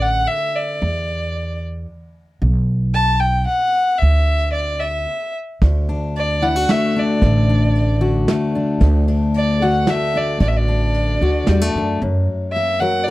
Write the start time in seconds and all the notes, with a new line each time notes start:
Already playing: A1 D3
0.02 F#5
0.27 E5
0.55 D5
0.82 E2
2.42 B1
2.94 A5
3.20 G5
3.46 F#5
3.97 E5
4.02 D2
4.52 D5
4.80 E5
5.62 D2, kick, ride
5.89 D4, ride
6.16 D5, ride
6.42 D3 E4 F#5
6.56 F#4
6.69 A3 E5, snare, ride
6.96 D4 D5
7.21 A1 D2, kick, ride
7.49 D4
7.75 ride
8.01 D3 F#4
8.28 A3, snare, ride
8.55 D4
8.80 D2, kick, ride
9.08 D4, ride
9.34 D5, ride
9.62 D3 F#4 F#5
9.87 A3 E5, snare, ride
10.15 D4 D5
10.40 A1 D2 D5, kick, ride
10.48 E5
10.57 D5
10.68 D4
10.94 ride
11.21 D2 D3 F#4
11.47 E2 G3, snare, ride
11.61 A3
11.75 F#2 D4
12.02 F#2
12.52 A#3 E5
12.80 F#3 A#4 F#5
13.04 D5